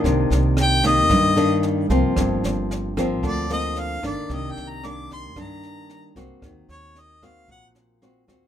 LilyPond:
<<
  \new Staff \with { instrumentName = "Harmonica" } { \time 4/4 \key c \dorian \tempo 4 = 113 r4 g''8 ees''4. r4 | r2 d''8 ees''8 f''8 d''8 | \tuplet 3/2 { ees''8 g''8 bes''8 } d'''8 c'''8 bes''4. r8 | r8 des''8 ees''8 f''8 ges''8 r4. | }
  \new Staff \with { instrumentName = "Nylon-string guitar" } { \time 4/4 \key c \dorian << { <ees bes d'>4. <ees bes>4 <ees bes d'>4 <f bes c'>8~ | <f bes c'>4. <f bes c'>4 <f bes c'>4 <ees bes d'>8~ | <ees bes d'>4 <ees bes d'>4 <ees bes d'>4. <bes c' ges'>8~ | <bes c' ges'>4. <bes c' ges'>4. <bes c' ges'>8 <bes c' ges'>8 | } \\ { c2 g,2 | g,2 d2 | c2 g,2 | ees2 bes,2 | } >> }
  \new Staff \with { instrumentName = "Upright bass" } { \clef bass \time 4/4 \key c \dorian c,8 c,4. g,4. c,16 r16 | g,,8 g,,4. d,4. g,,16 r16 | c,8 c,4. g,4. c,16 r16 | ees,8 ees,4. bes,,4. ees,16 r16 | }
  \new DrumStaff \with { instrumentName = "Drums" } \drummode { \time 4/4 <bd sn>8 sn8 <ss sn>8 <bd sn>8 <bd ss sn>8 sn8 sn8 <bd sn>8 | <bd ss sn>8 sn8 sn8 <bd ss sn>8 <bd sn>8 sn8 sn8 <bd ss sn>8 | <bd sn>8 sn8 <ss sn>8 <bd sn>8 <bd ss sn>8 sn8 sn8 <bd sn>8 | <bd ss sn>8 sn8 sn8 <bd ss sn>8 <bd sn>8 sn8 sn8 <bd ss sn>8 | }
>>